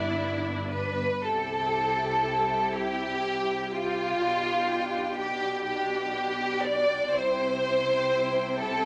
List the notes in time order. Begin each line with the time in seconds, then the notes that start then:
Already playing: G1 G2 B3 D4 E4 D5
0.74 B4
1.24 C2 C3 E4 G4 A4 G5
2.73 G4
3.73 F4
4.23 B1 B2 D4
5.18 G4
5.67 G4
6.64 D5
7.14 C2 C3 C4 E4 C5 G5
8.62 A4